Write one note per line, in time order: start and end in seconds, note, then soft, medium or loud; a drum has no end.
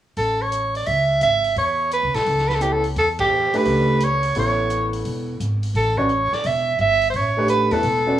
0.16 0.83 A1 medium
0.16 0.43 A4 medium
0.16 open hi-hat soft
0.42 0.76 C#5 medium
0.52 closed hi-hat soft
0.75 0.88 D5 medium
0.75 open hi-hat soft
0.86 1.19 C#2 medium
0.86 1.21 E5 medium
0.86 open hi-hat soft
1.21 1.54 G#1 medium
1.21 1.55 E5 loud
1.21 closed hi-hat soft
1.44 open hi-hat soft
1.56 2.00 E2 medium
1.56 1.90 C#5 medium
1.56 open hi-hat soft
1.92 2.17 B4 medium
1.92 closed hi-hat soft
2.03 2.14 C#2 medium
2.14 2.25 A#1 medium
2.14 2.50 A4 medium
2.14 snare soft
2.14 open hi-hat soft
2.26 2.92 C#2 medium
2.26 open hi-hat soft
2.38 snare soft
2.48 2.56 B4 medium
2.48 snare soft
2.55 2.63 A4 medium
2.61 2.81 B3 soft
2.61 2.82 E4 soft
2.61 2.74 G4 medium
2.61 2.82 A4 soft
2.61 2.82 C#5 medium
2.61 closed hi-hat soft
2.72 2.84 A4 medium
2.84 open hi-hat soft
2.96 3.50 E2 medium
2.96 3.08 A4 medium
2.96 open hi-hat soft
3.19 3.58 G4 medium
3.19 kick medium
3.19 ride medium
3.53 3.98 A3 medium
3.53 3.98 D4 medium
3.53 3.99 G4 medium
3.53 3.99 B4 medium
3.53 4.05 B4 medium
3.53 muted upright bass stroke soft
3.53 open hi-hat soft
3.65 4.32 C#2 medium
3.65 open hi-hat soft
4.00 4.37 C#5 medium
4.00 closed hi-hat soft
4.23 open hi-hat soft
4.35 5.02 A1 medium
4.35 5.33 B3 medium
4.35 5.33 E4 soft
4.35 5.33 A4 soft
4.35 5.34 C#5 medium
4.35 4.91 C#5 medium
4.35 open hi-hat soft
4.70 closed hi-hat soft
4.93 open hi-hat soft
5.05 5.38 E1 medium
5.05 open hi-hat soft
5.40 5.73 G#1 medium
5.40 closed hi-hat soft
5.63 open hi-hat soft
5.74 6.28 A1 medium
5.74 5.99 A4 medium
5.74 open hi-hat soft
5.97 6.09 C#4 medium
5.97 6.09 F#4 medium
5.97 6.09 B4 medium
5.97 6.36 C#5 medium
5.97 6.09 D5 medium
5.97 kick soft
6.09 closed hi-hat soft
6.32 6.48 D5 medium
6.32 muted upright bass stroke soft
6.32 snare soft
6.44 6.77 E1 medium
6.44 6.80 E5 medium
6.44 open hi-hat soft
6.79 7.12 G1 medium
6.79 7.08 E5 loud
6.79 closed hi-hat soft
7.02 open hi-hat soft
7.10 7.68 A1 medium
7.10 7.18 C5 medium
7.10 open hi-hat soft
7.16 7.49 C#5 medium
7.37 7.70 A3 medium
7.37 7.70 D4 medium
7.37 7.70 G4 medium
7.37 7.70 B4 medium
7.48 7.74 B4 medium
7.48 closed hi-hat soft
7.71 7.83 E2 medium
7.71 7.83 B3 medium
7.71 7.83 E4 medium
7.71 8.20 A4 medium
7.71 7.84 A4 medium
7.71 7.84 B4 medium
7.71 open hi-hat soft
7.83 8.20 E1 medium
7.83 open hi-hat soft
8.06 8.17 C#4 medium
8.06 8.18 F#4 medium
8.06 8.18 B4 soft
8.06 8.18 D5 medium